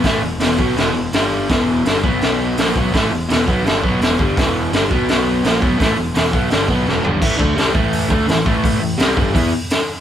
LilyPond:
<<
  \new Staff \with { instrumentName = "Overdriven electric guitar" } { \clef bass \time 4/4 \key a \lydian \tempo 4 = 168 <a, e a>8 <e, b,>8 <e, b, e>8 <b, fis b>8 <e, b, e>8 <e, b,>8 <g, d g>4 | <e, b, e>4 <g, d g>8 <b, fis b>4. <ais, f ais>8 <b, fis b>8 | <a, e a>8 <e, b,>8 <e, b, e>8 <b, fis b>8 <g, d g>8 <b, fis b>8 <e, b, e>8 <g, d g>8 | <e, b, e>4 <g, d g>8 <b, fis b>4. <ais, f ais>8 <b, fis b>8 |
<a, e a>8 <e, b,>8 <e, b, e>8 <b, fis b>8 <g, d g>8 <b, fis b>8 <e, b, e>8 <g, d g>8 | <a, e a>8 <d a d'>8 <c g c'>8 <a, e a>4 <d a d'>8 <a, e>8 <a, e a>8~ | <a, e a>8 <a, e>8 <c g c'>8 <g, d g>8 <e b e'>8 r4. | }
  \new Staff \with { instrumentName = "Picked electric bass" } { \clef bass \time 4/4 \key a \lydian a,,8 e,,8 e,,8 b,,8 e,,8 e,,8 g,,4 | e,,4 g,,8 b,,4. ais,,8 b,,8 | a,,8 e,,8 e,,8 b,,8 g,,8 b,,8 e,,8 g,,8 | e,,4 g,,8 b,,4. ais,,8 b,,8 |
a,,8 e,,8 e,,8 b,,8 g,,8 b,,8 e,,8 g,,8 | a,,8 d,8 c,8 a,,4 d,8 a,,8 a,,8~ | a,,8 a,,8 c,8 g,,8 e,8 r4. | }
  \new DrumStaff \with { instrumentName = "Drums" } \drummode { \time 4/4 <hho bd sn>4 <hho sn>8 bd8 <hho sn>4 <hho sn>4 | <hho bd sn>4 <hho sn>8 bd8 <hho sn>4 <hho sn>8 bd8 | <hho bd sn>4 <hho sn>8 bd8 <hho sn>8 bd8 <hho sn>8 bd8 | <hho bd sn>4 <hho sn>8 bd8 <hho sn>4 <hho sn>8 bd8 |
<hho bd sn>4 <hho sn>8 bd8 <hho sn>8 bd8 sn8 tomfh8 | <cymc bd>8 bd8 <hho sn>8 bd8 hho8 bd8 <hho sn>8 bd8 | <hho bd>4 <hho sn>8 bd8 <hho bd>4 <hho sn>4 | }
>>